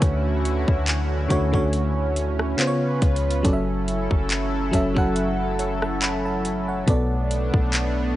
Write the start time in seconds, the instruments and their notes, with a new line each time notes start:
Already playing: fm electric piano D3 A3 F#4 B4 C#5 E5, analog synth pad D3 A3 C#4 E4 F#4
0.02 808-style bass D2, kick, closed hi-hat
0.45 closed hi-hat
0.68 808-style bass D2, kick
0.87 clap, closed hi-hat
1.28 808-style bass D2, fm electric piano D3 A3 F#4 C#5, kick, closed hi-hat
1.52 fm electric piano D3 A3 F#4 C#5, kick
1.73 closed hi-hat
2.16 closed hi-hat
2.39 cross-stick
2.57 fm electric piano C#3 B3 F4 C5, analog synth pad C#3 F4 B4, clap, closed hi-hat
2.67 fm electric piano C#5
3.02 808-style bass C#2, kick, closed hi-hat
3.16 closed hi-hat
3.31 closed hi-hat
3.43 808-style bass F#1, fm electric piano F#3 C#4 A4 D5, analog synth pad F#3 E4 A4, kick, closed hi-hat
3.53 fm electric piano E5
3.88 closed hi-hat
4.11 808-style bass F#1, kick
4.30 clap, closed hi-hat
4.71 808-style bass F#1, fm electric piano F#3 C#4 A4 E5, kick, closed hi-hat
4.94 fm electric piano F#3 C#4 A4 F#5, kick
5.16 closed hi-hat
5.59 fm electric piano C#5 F#5, closed hi-hat
5.82 fm electric piano E5 A5, cross-stick
6.02 fm electric piano F#5 B5, clap, closed hi-hat
6.25 fm electric piano E5 A5
6.45 closed hi-hat
6.68 fm electric piano C#5 F#5
6.86 808-style bass B1, fm electric piano B2 B3 A4 D5, analog synth pad A3 B3 D4, kick, closed hi-hat
7.31 closed hi-hat
7.54 808-style bass B1, kick
7.73 clap, closed hi-hat